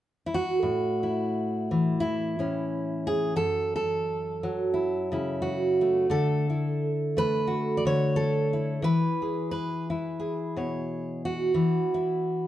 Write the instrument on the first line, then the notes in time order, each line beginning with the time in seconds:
steel-string acoustic guitar
0.26 E4
0.34 F#4
0.63 A2
1.03 E4
1.71 E3
2.00 E4
2.39 A2 C#4
3.07 G#4
3.36 F#2 A4
3.76 A4
4.43 F#3
4.74 E4
5.12 C#3 E4
5.42 F#4
5.81 A3
6.10 D3 A4
6.50 E4
7.17 A3 B4
7.47 F#4
7.77 D5
7.85 D3 C#5
8.16 A4
8.53 E4
8.82 E3 B4
9.22 G#4
9.51 B4
9.90 E4
10.20 G#4
10.56 B2 C#5
11.25 F#4
11.54 E3
11.94 E4